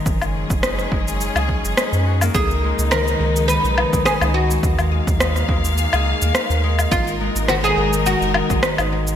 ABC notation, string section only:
X:1
M:4/4
L:1/8
Q:"Swing 16ths" 1/4=105
K:C#mix
V:1 name="String section"
[F,CG]8 | [C,G,D]8 | [D,A,e]8 | [G,DA]8 |]